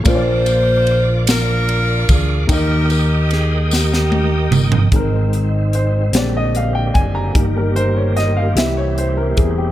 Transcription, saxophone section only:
\new Staff \with { instrumentName = "Saxophone section" } { \time 6/8 \key aes \major \tempo 4. = 49 << { c''4. bes'4 aes'8 | bes'8 bes'8 aes'8 g'4 r8 | r2. | r2. | } \\ { f'4. <d' f'>4. | <ees' g'>4. <bes ees'>4. | r2. | r2. | } >> }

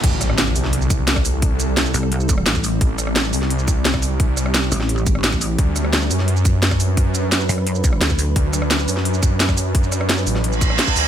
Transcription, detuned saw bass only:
\new Staff \with { instrumentName = "Detuned saw bass" } { \clef bass \time 4/4 \key a \dorian \tempo 4 = 173 a,,4. c,2~ c,8~ | c,4. r2 r8 | a,,4. c,2~ c,8~ | c,4. r2 r8 |
d,4. fis,2~ fis,8~ | fis,4. r2 r8 | d,4. fis,2~ fis,8~ | fis,4. a,,4. r8 d,8 | }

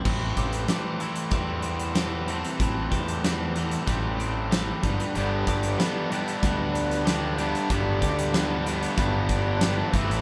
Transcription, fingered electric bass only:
\new Staff \with { instrumentName = "Fingered electric bass" } { \clef bass \time 4/4 \key a \minor \tempo 4 = 94 a,,8 a,,8 r4 e,2 | a,,8 e,4. a,,4. g,,16 r16 | g,,8 g,,8 r4 d,2 | g,,8 d,4. g,,4. g,,16 a,,16 | }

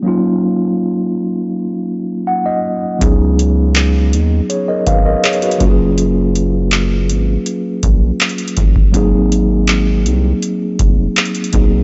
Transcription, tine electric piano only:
\new Staff \with { instrumentName = "Tine electric piano" } { \time 4/4 \key ees \minor \tempo 4 = 81 << { r2. ges''16 ees''8. | r2 <aes' des''>16 <bes' ees''>16 <ces'' f''>16 <bes' ees''>16 <aes' des''>16 <ges' ces''>8 r16 | r1 | r1 | } \\ { <ges bes des' ees' f'>1 | <ges ces' des' ees' aes'>2.~ <ges ces' des' ees' aes'>8 <ges bes des' f' ges' aes'>8~ | <ges bes des' f' ges' aes'>2.~ <ges bes des' f' ges' aes'>8 r8 | <ges bes c' ees' aes'>2.~ <ges bes c' ees' aes'>8 <ges bes c' ees' aes'>8 | } >> }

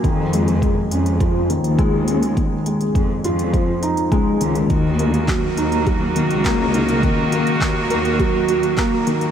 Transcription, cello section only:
\new Staff \with { instrumentName = "Cello section" } { \clef bass \time 4/4 \key cis \mixolydian \tempo 4 = 103 eis,4. eis,4~ eis,16 dis,4~ dis,16~ | dis,8. r16 eis,8 eis,4~ eis,16 r16 cis,8 cis,8 | dis,4. dis,4~ dis,16 cis,4~ cis,16~ | cis,8. r16 dis,8 dis,4~ dis,16 r4 r16 | }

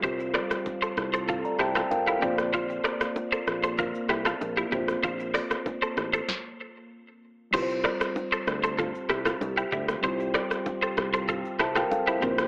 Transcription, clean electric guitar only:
\new Staff \with { instrumentName = "Clean electric guitar" } { \time 4/4 \key bes \lydian \tempo 4 = 96 <g' c''>16 r16 <bes' d''>16 r8 <a' c''>16 r16 <a' c''>16 <f' a'>16 r16 <e' g'>16 <f' a'>16 r16 <e' g'>16 <c' g'>16 r16 | <f' c''>16 r16 <bes' d''>16 r8 <a' c''>16 r16 <a' c''>16 <f' bes'>16 r16 <e' g'>16 <f' a'>16 r16 <e' g'>16 <e' g'>16 r16 | <f' c''>16 r16 <bes' d''>16 r8 <a' c''>16 r16 <a' c''>16 r2 | <g' c''>16 r16 <bes' d''>16 r8 <a' c''>16 r16 <a' c''>16 <f' a'>16 r16 <e' g'>16 <f' a'>16 r16 <e' g'>16 <e' g'>16 r16 |
<g' c''>16 r16 <bes' d''>16 r8 <a' c''>16 r16 <a' c''>16 <f' a'>16 r16 <e' g'>16 <f' a'>16 r16 <e' g'>16 <c' g'>16 r16 | }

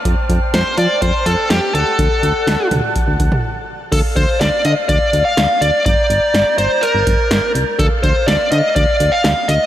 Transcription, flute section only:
\new Staff \with { instrumentName = "Flute section" } { \time 4/4 \key d \phrygian \tempo 4 = 124 << { <g'' a'' f'''>2.~ <g'' a'' f'''>8 <fis'' a'' fis'''>8~ | <fis'' a'' fis'''>1 | <f'' f''' a'''>1 | <bes'' g'''>1 |
<f'' f'''>1 | } \\ { c''2.~ c''8 d''8~ | d''1 | d''1~ | d''1~ |
d''1 | } >> }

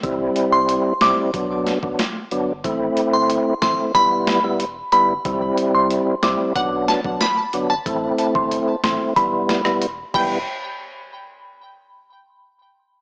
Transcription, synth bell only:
\new Staff \with { instrumentName = "Synth bell" } { \time 4/4 \key e \minor \tempo 4 = 92 r8. c'''16 r8 d'''16 r2 r16 | r8. c'''16 r8 c'''16 r16 b''8. r8. b''16 r16 | r8. c'''16 r8 d'''16 r2 r16 | r8. c'''16 r8 c'''16 r16 b''8. r8. b''8 |
r1 | }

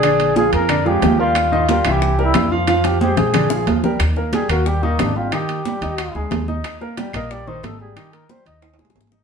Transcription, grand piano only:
\new Staff \with { instrumentName = "Grand piano" } { \time 4/4 \key ees \major \tempo 4 = 182 <d d' d''>4 <f f' aes'>4 <d d' d''>8 <f aes f'>4 <g g' bes'>8~ | <g g' bes'>8 <ees ees' ees''>8 <g g' bes'>8 <fes fes' fes''>4 <g g' bes'>4 <f f' f''>8 | <f f' f''>4 <aes aes' c''>4 <d d' d''>8 <f f' aes'>4 <g g' bes'>8 | r8 <bes bes'>8 <g g'>8 <bes bes'>8 <g g'>8 <ees ees'>4 <g g'>8 |
<ees ees'>4 <g g'>8 <ees' ees''>4 <aes aes'>4 <ees' ees''>8~ | <ees' ees''>8 <bes bes'>8 <g g'>8 <bes bes'>8 <g g'>8 <ees ees'>4 <g g'>8 | <ees ees'>4 <g g'>8 <ees' ees''>4 <aes aes'>4 <ees' ees''>8 | }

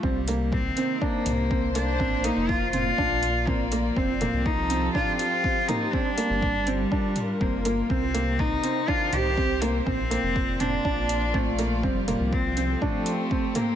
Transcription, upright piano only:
\new Staff \with { instrumentName = "Upright piano" } { \time 4/4 \key c \dorian \tempo 4 = 122 c'8 bes4 c'8 d'4 c'8 bes8 | c'8 bes4 c'8 d'4 c'8 bes8 | c'8 bes4 c'8 d'4 c'8 bes8 | c'8 bes4 c'8 d'4 c'8 bes8 |
c'8 bes4 c'8 d'4 c'8 bes8 | c'8 bes4 c'8 d'4 c'8 bes8 | c'8 bes4 c'8 d'4 c'8 bes8 | }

